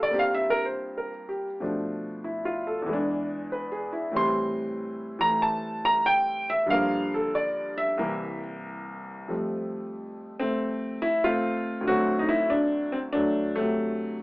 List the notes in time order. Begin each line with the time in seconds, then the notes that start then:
Already playing: G2 G3 F4 A4
0.03 D5
0.11 A#3 C4 G4
0.19 F5
0.35 E5
0.50 A#4
0.65 C5
0.97 A#4
1.29 G4
1.60 B2 F3 A3 D4
2.24 E4
2.45 F4
2.67 A4
2.82 E2
2.86 E3 G#3
2.93 D4
3.52 B4
3.72 G#4
3.93 E4
4.11 A2 E3 G3
4.16 C4 C6
5.19 E3 A3 A#5
5.42 A5
5.85 A#5
6.06 G5
6.50 E5
6.66 G2 D3 F3
6.70 A#3 F5
7.14 A4
7.35 D5
7.78 E5
7.98 C2 C3 E3 A#3
9.28 F2 F3 G3 A3
10.39 A3 C4
11.02 E4
11.24 A3 C4 F4
11.81 D2
11.85 D3 F#3 C4 F#4
11.89 A3
12.19 D#4
12.29 E4
12.50 D4
12.92 C4
13.13 F#3 A3 D4
13.56 C3 F#3 A3